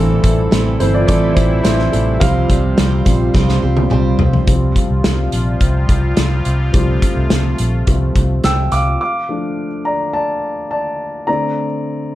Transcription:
Already playing: A1 A2 C3 E3 G3 A3 C4 E4 A4
0.23 A1 A3 C4 E4 A4, kick, closed hi-hat
0.51 A1 A3 C4 E4 A4, snare, closed hi-hat
0.80 G1 E3 A3 C4 E4 A4 C5, closed hi-hat
0.94 F4 D5
1.07 A1 A2 E3 A3 C4 E4 A4 D5, kick, closed hi-hat
1.35 A1 A3 C4 E4 A4 C5, kick, closed hi-hat
1.63 A1 A3 C4 E4 A4 C5, snare, closed hi-hat
1.79 snare
1.92 A1 A3 C4 E4 A4, closed hi-hat
2.20 C2 C3 F3 G3 C4 F4 G4 C5 F5, kick, closed hi-hat
2.48 C2 G3 C4 G4 C5, kick, closed hi-hat
2.77 C2 G3 C4 G4 C5, snare, closed hi-hat
3.05 A#1 G3 C4 G4 C5, kick, closed hi-hat
3.34 C2 C3 F3 G3 C4 G4 C5, kick, snare
3.49 snare
3.62 C2 G3 C4 G4 C5
3.77 high tom
3.90 C2 G3 C4 G4 C5, mid tom
4.18 C2 G3 C4 G4 C5, floor tom
4.33 floor tom
4.47 C2 C3 F3 G3 C4 F4, kick, closed hi-hat
4.76 kick, closed hi-hat
4.90 C2
5.04 C2, snare, closed hi-hat
5.32 A#1, closed hi-hat
5.61 C2, kick, closed hi-hat
5.89 C2, kick, closed hi-hat
6.17 C2, snare, closed hi-hat
6.45 C2, closed hi-hat
6.73 C2 F3 G3 A3 C4, kick, closed hi-hat
7.02 kick, closed hi-hat
7.16 C2
7.30 C2, snare, closed hi-hat
7.58 A#1, closed hi-hat
7.87 C2 F3 G3 C4, kick, closed hi-hat
8.16 C2, kick, closed hi-hat
8.44 C2 G5 E6, snare, closed hi-hat
8.72 C2 F5 D6, closed hi-hat
9.01 F5 D6
9.29 F3 A3 D4
9.85 D5 A#5
10.13 D5 A5
10.71 D5 A5
11.27 D3 A3 C4 D5 A#5

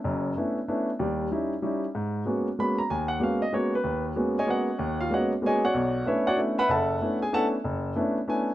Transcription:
0.04 F#1 F#2
0.37 A3 B3 C#4 D4 E4
0.68 A3 B3 C#4 D4 E4
0.99 D#2 G3
1.32 G3 C#4 D#4 E4
1.62 G3 C#4 D#4 E4
1.95 G#2
2.26 G#3 A#3 B3 C#4 F#4
2.59 G#3 A#3 B3 C#4 F#4 B5
2.78 A#5
2.90 D#2 G#5
3.08 F#5
3.20 G#3 A#3 B3 C#4 F#4 F5
3.42 D#5
3.53 G#3 A#3 B3 C#4 F#4 C#5
3.75 B4
3.84 D#2
4.16 G#3 A#3 B3 C#4 F#4
4.39 G#4 C#5 D#5 G#5
4.47 G#3 A#3 B3 C#4 F#4 D#5 F#5
4.51 C#5
4.79 D#2
5.01 F4 F5
5.10 G#3 A#3 B3 C#4 F#4 C#5 D#5 F#5
5.42 G#3 A#3 B3 C#4 F#4
5.46 G#4 C#5 D#5 G#5
5.65 F#4 C#5 D5 F#5
5.74 B1
6.06 A3 B3 C#4 D4 E4 B4 C#5 E5
6.27 F#4 C#5 D5 F#5
6.37 A3 B3 C#4 D4 E4
6.58 B4 E5 F#5 B5
6.69 F#1 A4 E5 F#5 A5
7.01 A3 B3 C#4 D4 E4
7.22 G#4 G#5
7.32 A3 B3 C#4 D4 E4 A4 E5 F#5 A5
7.64 F#1
7.96 A3 B3 C#4 D4 E4
8.28 A3 B3 C#4 D4 E4 G#5

